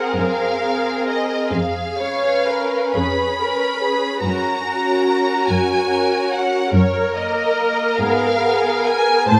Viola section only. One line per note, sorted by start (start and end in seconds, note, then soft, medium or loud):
0.00 1.53 A#4 soft
1.54 1.99 G#4 soft
1.99 2.48 C#5 soft
2.47 2.95 A#4 soft
2.96 3.40 G#4 soft
3.40 3.82 A#4 soft
3.83 4.24 G#4 soft
4.24 6.69 F#4 soft
6.74 9.25 A#4 medium
9.29 9.40 C5 medium